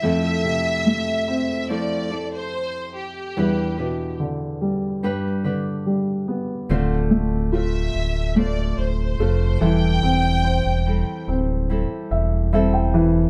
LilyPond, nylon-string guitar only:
\new Staff \with { instrumentName = "Nylon-string guitar" } { \time 4/4 \key a \minor \tempo 4 = 72 <f a c' e' a'>2 <f a c' e' a'>8 <c' e' a'>4. | <e g d' e' b'>8 <d' e' b'>4. <g d' g' b'>8 <d' g' b'>4. | <d a c' f' c''>4 <a c' f' c''>4 <a c' f' c''>4 <a c' f' c''>8 <e g c' e' a'>8~ | <e g c' e' a'>4 <g c' e' a'>4 <g c' e' a'>4 <g c' e' a'>4 | }